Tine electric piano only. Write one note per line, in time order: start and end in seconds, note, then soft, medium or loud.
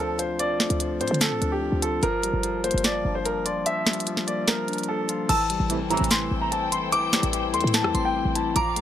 0.00 0.40 F3 medium
0.00 0.60 A3 medium
0.00 0.40 C4 medium
0.00 0.80 D4 medium
0.19 1.21 F4 medium
0.40 0.79 F3 loud
0.60 1.62 A3 medium
0.80 1.20 F3 medium
1.00 2.02 C4 medium
1.21 1.60 F3 medium
1.41 2.03 D4 medium
1.61 2.02 F3 medium
1.82 2.03 F4 medium
2.03 2.43 F3 loud
2.23 3.25 G3 medium
2.44 2.84 F3 medium
2.64 3.66 A#3 medium
2.85 3.24 F3 medium
3.05 4.07 D4 medium
3.25 3.65 F3 medium
3.46 4.48 F4 medium
3.67 4.06 F3 loud
3.86 4.88 G3 medium
4.07 4.47 F3 medium
4.28 5.30 A#3 medium
4.48 4.87 F3 medium
4.69 5.30 D4 medium
4.89 5.29 F3 medium
5.09 5.30 F4 medium
5.29 5.69 E3 loud
5.50 6.52 G3 medium
5.70 6.10 E3 medium
5.90 6.92 A3 medium
6.11 6.51 E3 loud
6.31 7.33 C4 medium
6.52 6.92 E3 medium
6.72 7.74 E4 medium
6.93 7.32 E3 loud
7.13 8.15 G3 medium
7.33 7.73 E3 medium
7.53 8.56 A3 medium
7.74 8.14 E3 medium
7.94 8.56 C4 medium
8.15 8.56 E3 medium
8.35 8.56 E4 medium
8.55 8.81 F3 loud
8.76 8.81 A3 medium